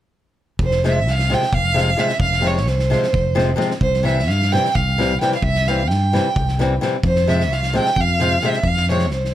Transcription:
0.59 fingered electric bass F1, kick
0.64 violin C5
0.71 snare
0.84 nylon-string guitar C3 F3 G#3 C4, snare
0.89 violin E5
1.06 fingered electric bass C2, snare
1.11 violin F5
1.19 snare
1.30 nylon-string guitar C3 F3 G#3 C4, snare
1.34 violin G5
1.42 snare
1.47 violin G5
1.53 fingered electric bass F1, violin F5, kick
1.74 nylon-string guitar C3 F3 G#3 C4, snare
1.97 nylon-string guitar C3 F3 G#3 C4, violin E5, snare
2.09 snare
2.20 fingered electric bass F1, violin F5, kick
2.32 snare
2.41 nylon-string guitar C3 F3 G#3 C4, snare
2.47 violin C#5
2.57 snare
2.66 fingered electric bass C2, violin C5, snare
2.79 snare
2.90 nylon-string guitar C3 F3 G#3 C4, snare
3.03 snare
3.13 fingered electric bass F1, kick
3.35 nylon-string guitar C3 F3 G#3 C4, snare
3.56 nylon-string guitar C3 F3 G#3 C4
3.60 snare
3.71 snare
3.81 fingered electric bass C2, violin C5, kick
3.94 snare
4.03 nylon-string guitar C3 E3 G3 C4, violin E5, snare
4.19 snare
4.28 fingered electric bass G2, violin F5, snare
4.42 snare
4.52 nylon-string guitar C3 E3 G3 C4, violin G5, snare
4.65 snare
4.75 fingered electric bass C2, violin F5, kick
4.98 nylon-string guitar C3 E3 G3 C4, snare
5.21 nylon-string guitar C3 E3 G3 C4, violin G5, snare
5.31 snare
5.36 violin F5
5.42 fingered electric bass C2, violin E5, kick
5.55 snare
5.67 nylon-string guitar C3 E3 G3 C4, violin F5, snare
5.88 fingered electric bass G2, violin G5, snare
6.13 nylon-string guitar C3 E3 G3 C4, snare
6.36 fingered electric bass C2, kick
6.48 snare
6.59 nylon-string guitar C3 E3 G3 C4, snare
6.81 nylon-string guitar C3 E3 G3 C4, snare
7.03 fingered electric bass F2, violin C5, kick
7.16 snare
7.27 nylon-string guitar C3 F3 G#3 C4, violin E5, snare
7.40 snare
7.50 fingered electric bass C2, violin F5, snare
7.63 snare
7.73 nylon-string guitar C3 F3 G#3 C4, snare
7.78 violin G5
7.85 snare
7.96 fingered electric bass F2, kick
8.00 violin F5
8.19 nylon-string guitar C3 F3 G#3 C4, snare
8.41 nylon-string guitar C3 F3 G#3, snare
8.45 nylon-string guitar C4, violin E5
8.53 snare
8.63 fingered electric bass F2, violin F5, kick
8.76 snare
8.88 nylon-string guitar C3 F3 G#3 C4, violin C#5, snare
8.99 snare
9.11 fingered electric bass C2, violin C5, snare
9.25 snare

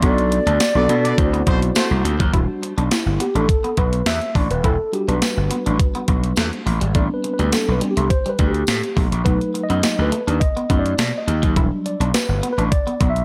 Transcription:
0.02 slap bass B1, tine electric piano B3 D4 F#4 A4, clean electric guitar B3, shakuhachi D5, kick, closed hi-hat
0.18 closed hi-hat
0.31 muted clean electric guitar stroke, closed hi-hat
0.46 slap bass D2, clean electric guitar D4, closed hi-hat
0.60 muted clean electric guitar stroke, snare, closed hi-hat, tambourine
0.75 slap bass B1, tine electric piano B3 D4 F#4 A4, horn section B3 A4 D5
0.89 slap bass B2, tine electric piano B3 D4 F#4 A4, clean electric guitar B3, closed hi-hat
1.05 horn section B3 A4 D5, clean electric guitar D4, closed hi-hat
1.18 slap bass D2, tine electric piano C4 E4 F#4 C5, muted clean electric guitar stroke, kick, closed hi-hat
1.33 clean electric guitar B3, closed hi-hat
1.47 slap bass B1, horn section A3 F#4 C5, clean electric guitar B3, kick, closed hi-hat
1.62 closed hi-hat
1.75 clean electric guitar A3, horn section A3 F#4 C5, snare, closed hi-hat, tambourine
1.91 slap bass C2
2.04 slap bass D2, muted clean electric guitar stroke, closed hi-hat
2.20 slap bass D#2, clean electric guitar F#3, kick, closed hi-hat
2.33 slap bass E1, tine electric piano G3 D4 F#4, clean electric guitar E4, kick, closed hi-hat
2.63 muted clean electric guitar stroke, closed hi-hat
2.77 slap bass B1, clean electric guitar D4, closed hi-hat
2.91 tine electric piano E4, muted clean electric guitar stroke, snare, closed hi-hat, tambourine
3.06 slap bass G1
3.20 clean electric guitar B3, tine electric piano G4, closed hi-hat
3.35 slap bass A1, clean electric guitar D4, tine electric piano A4, closed hi-hat
3.49 muted clean electric guitar stroke, kick, closed hi-hat
3.64 clean electric guitar B3, closed hi-hat
3.77 slap bass B1, clean electric guitar B3, tine electric piano B4, kick, closed hi-hat
3.93 closed hi-hat
4.06 slap bass E2, tine electric piano E5, snare, closed hi-hat, tambourine
4.21 closed hi-hat
4.35 slap bass A1, clean electric guitar D4, tine electric piano D5, kick, open hi-hat
4.50 slap bass D#1, tine electric piano B4, closed hi-hat
4.64 slap bass E1, clean electric guitar E4, tine electric piano A4, kick, closed hi-hat
4.93 tine electric piano G3 D4 F#4 G4, muted clean electric guitar stroke, closed hi-hat
5.08 slap bass B1, clean electric guitar D4, tine electric piano B4, closed hi-hat
5.22 muted clean electric guitar stroke, snare, closed hi-hat, tambourine
5.37 slap bass G1
5.51 clean electric guitar B3, closed hi-hat
5.66 slap bass A1, clean electric guitar D4, closed hi-hat
5.80 muted clean electric guitar stroke, kick, closed hi-hat
5.95 clean electric guitar B3, closed hi-hat
6.08 slap bass B1, clean electric guitar B3, kick, closed hi-hat
6.24 closed hi-hat
6.36 slap bass E2, clean electric guitar A3, snare, closed hi-hat, tambourine
6.53 closed hi-hat
6.66 slap bass A1, muted clean electric guitar stroke, open hi-hat
6.81 slap bass G#1, clean electric guitar G3, closed hi-hat
6.95 slap bass A1, tine electric piano G3 B3 C4 D4 D5, clean electric guitar A3, kick, closed hi-hat
7.14 tine electric piano B4
7.24 muted clean electric guitar stroke, closed hi-hat
7.34 tine electric piano B4
7.39 slap bass D2, clean electric guitar G3, closed hi-hat
7.52 tine electric piano A4, muted clean electric guitar stroke, snare, closed hi-hat, tambourine
7.68 slap bass B1, tine electric piano B4
7.81 tine electric piano G3 B3 C4 D4, clean electric guitar G3, closed hi-hat
7.91 tine electric piano G4
7.97 slap bass C2, clean electric guitar A3, closed hi-hat
8.10 tine electric piano C5, muted clean electric guitar stroke, kick, closed hi-hat
8.26 clean electric guitar G3, tine electric piano B4, closed hi-hat
8.39 slap bass D2, clean electric guitar G3, kick, closed hi-hat
8.48 tine electric piano G4
8.54 closed hi-hat
8.67 slap bass A2, snare, closed hi-hat, tambourine
8.83 closed hi-hat
8.97 slap bass B1, clean electric guitar A3, kick, open hi-hat
9.12 slap bass A#1, closed hi-hat
9.25 slap bass B1, tine electric piano F#3 A3 D#4 B4, clean electric guitar B3, kick, closed hi-hat
9.41 closed hi-hat
9.54 muted clean electric guitar stroke, closed hi-hat
9.64 tine electric piano D#5
9.70 slap bass F#2, clean electric guitar B3, closed hi-hat
9.83 muted clean electric guitar stroke, snare, closed hi-hat, tambourine
9.99 slap bass D2, tine electric piano B4
10.12 clean electric guitar A3, closed hi-hat
10.27 slap bass D#2, clean electric guitar D4, closed hi-hat
10.40 tine electric piano D#5, muted clean electric guitar stroke, kick, closed hi-hat
10.57 clean electric guitar B3, closed hi-hat
10.69 slap bass F#2, tine electric piano F#3 A3 D#4, clean electric guitar B3, kick, closed hi-hat
10.79 tine electric piano D5
10.86 closed hi-hat
10.98 slap bass B2, clean electric guitar A3, snare, closed hi-hat, tambourine
11.18 tine electric piano D#5
11.27 slap bass D#2, muted clean electric guitar stroke, closed hi-hat
11.43 slap bass D#2, clean electric guitar F#3, kick, closed hi-hat
11.56 slap bass E1, tine electric piano F#3 G3 D4, clean electric guitar E4, kick, closed hi-hat
11.86 tine electric piano D5, muted clean electric guitar stroke, closed hi-hat
12.00 slap bass B1, clean electric guitar D4, closed hi-hat
12.14 tine electric piano B4, muted clean electric guitar stroke, snare, closed hi-hat, tambourine
12.29 slap bass G1
12.43 clean electric guitar B3, closed hi-hat
12.53 tine electric piano B4
12.58 slap bass A1, clean electric guitar D4, closed hi-hat
12.72 tine electric piano D5, muted clean electric guitar stroke, kick, closed hi-hat
12.87 clean electric guitar B3, closed hi-hat
13.00 slap bass B1, clean electric guitar B3, kick, closed hi-hat
13.10 tine electric piano E5
13.16 closed hi-hat

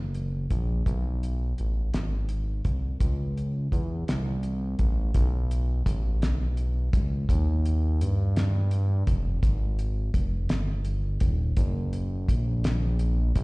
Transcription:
Already playing: analog synth bass F#1
0.15 closed hi-hat
0.50 analog synth bass A#1, kick, closed hi-hat
0.86 analog synth bass B1, kick, closed hi-hat
1.23 closed hi-hat
1.58 analog synth bass A1, closed hi-hat
1.94 analog synth bass G#1, snare, closed hi-hat
2.29 closed hi-hat
2.65 analog synth bass C2, kick, closed hi-hat
3.00 analog synth bass C#2, kick, closed hi-hat
3.37 closed hi-hat
3.72 analog synth bass E2, kick, closed hi-hat
4.08 analog synth bass C2, snare, closed hi-hat
4.43 closed hi-hat
4.79 analog synth bass A1, kick, closed hi-hat
5.14 analog synth bass B1, kick, closed hi-hat
5.51 closed hi-hat
5.86 analog synth bass A1, kick, closed hi-hat
6.22 analog synth bass B1, snare, closed hi-hat
6.57 closed hi-hat
6.93 analog synth bass C#2, kick, closed hi-hat
7.29 analog synth bass D#2, kick, closed hi-hat
7.66 closed hi-hat
8.01 analog synth bass G2, closed hi-hat
8.36 snare, closed hi-hat
8.71 closed hi-hat
9.07 analog synth bass F1, kick, closed hi-hat
9.43 analog synth bass G#1, kick, closed hi-hat
9.79 closed hi-hat
10.14 analog synth bass F1, kick, closed hi-hat
10.49 analog synth bass G1, snare, closed hi-hat
10.85 closed hi-hat
11.20 analog synth bass D#1, kick, closed hi-hat
11.57 analog synth bass F#1, kick, closed hi-hat
11.93 closed hi-hat
12.28 analog synth bass A#1, kick, closed hi-hat
12.64 snare, closed hi-hat
12.99 closed hi-hat
13.35 analog synth bass A#1, kick, closed hi-hat

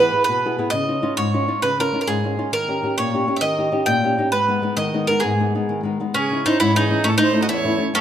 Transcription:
Already playing: nylon-string guitar E3, mandolin B4
0.00 nylon-string guitar B3 E4 G#4
0.12 nylon-string guitar B3 E4 G#4
0.24 mandolin B4
0.29 nylon-string guitar B2
0.46 nylon-string guitar B3 E4 G#4
0.58 nylon-string guitar B3 E4 G#4
0.70 nylon-string guitar C#3, mandolin D#5
0.88 nylon-string guitar C#4 D#4 F4
1.02 nylon-string guitar C#4 D#4 F4
1.17 nylon-string guitar G#2, mandolin C#5
1.34 nylon-string guitar C#4 D#4 F4
1.48 nylon-string guitar C#4 D#4 F4
1.62 nylon-string guitar C#3, mandolin B4
1.79 nylon-string guitar C#4 D#4 F4, mandolin A#4
1.93 nylon-string guitar C#4 D#4 F4
2.01 mandolin A#4
2.07 nylon-string guitar G#2, mandolin G#4
2.24 nylon-string guitar C#4 D#4 F4
2.37 nylon-string guitar C#4 D#4 F4
2.52 nylon-string guitar D#3, mandolin A#4
2.68 nylon-string guitar C#4 D#4 G4
2.83 nylon-string guitar C#4 D#4 G4
2.98 nylon-string guitar A#2, mandolin C#5
3.13 nylon-string guitar C#4 D#4 G4
3.27 nylon-string guitar C#4 D#4 G4
3.36 mandolin E5
3.41 nylon-string guitar D#3, mandolin D#5
3.58 nylon-string guitar C#4 D#4 G4
3.72 nylon-string guitar C#4 D#4 G4
3.86 nylon-string guitar A#2, mandolin G5
4.03 nylon-string guitar C#4 D#4 G4
4.18 nylon-string guitar C#4 D#4 G4
4.32 nylon-string guitar G#2, mandolin B4
4.48 nylon-string guitar G#3 B3 D#4
4.62 nylon-string guitar G#3 B3 D#4
4.77 nylon-string guitar D#3, mandolin D#5
4.94 nylon-string guitar G#3 B3 D#4
5.07 nylon-string guitar G#3 B3 D#4, mandolin A#4
5.20 mandolin G#4
5.24 nylon-string guitar G#2
5.39 nylon-string guitar G#3 B3 D#4
5.55 nylon-string guitar G#3 B3 D#4
5.69 nylon-string guitar D#3
5.83 nylon-string guitar G#3 B3 D#4
6.00 nylon-string guitar G#3 B3 D#4
6.14 nylon-string guitar C#3, mandolin C#4, violin G#4
6.31 nylon-string guitar C#4 D#4 E4
6.46 nylon-string guitar C#4 D#4 E4, mandolin D#4, violin C5
6.60 nylon-string guitar G#2, mandolin E4, violin C#5
6.75 nylon-string guitar E3 C#4 D#4, mandolin D#4, violin G#4
6.90 nylon-string guitar C#4 D#4 E4
7.04 nylon-string guitar A2, mandolin C#4, violin A4
7.18 nylon-string guitar A3 C#4 E4, mandolin D#4
7.23 violin C5
7.33 nylon-string guitar A3 C#4 E4
7.42 mandolin F#4, violin D#5
7.49 nylon-string guitar E2, mandolin E4, violin C#5
7.64 nylon-string guitar A3 C#4 E4
7.78 nylon-string guitar A3 C#4 E4
7.94 nylon-string guitar F#2, mandolin C#4, violin A4

